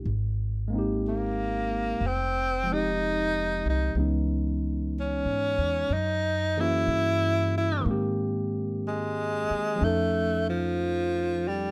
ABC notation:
X:1
M:4/4
L:1/8
Q:"Swing" 1/4=62
K:Ab
V:1 name="Tenor saxophone"
z2 B,2 C E2 E | z2 D2 E _F2 F | z2 A,2 =A, F,2 G, |]
V:2 name="Tine electric piano"
z [A,B,CEG]3 z [F,A,CEG]3 | [_F,A,_CDE]4 z [F,B,D_GA]3 | [E,A,B,CG]4 [F,=A,^CE=A]4 |]
V:3 name="Upright bass" clef=bass
A,,,4 F,,,3 C,, | D,,2- (3D,, A,, _F,, _G,,2 =G,,2 | A,,3 z F,,4 |]